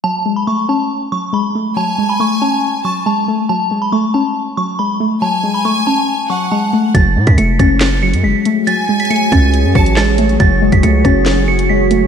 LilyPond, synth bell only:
\new Staff \with { instrumentName = "Synth bell" } { \time 4/4 \key fis \minor \tempo 4 = 139 a''8. b''16 cis'''8 a''4 cis'''8 b''8 r8 | a''8. b''16 cis'''8 a''4 cis'''8 a''8 r8 | a''8. b''16 cis'''8 a''4 cis'''8 b''8 r8 | a''8. b''16 cis'''8 a''4 cis'''8 a''8 r8 |
a'''8. b'''16 cis''''8 a'''4 cis''''8 b'''8 r8 | a'''8. b'''16 cis''''8 a'''4 cis''''8 a'''8 r8 | a'''8. b'''16 cis''''8 a'''4 cis''''8 b'''8 r8 | }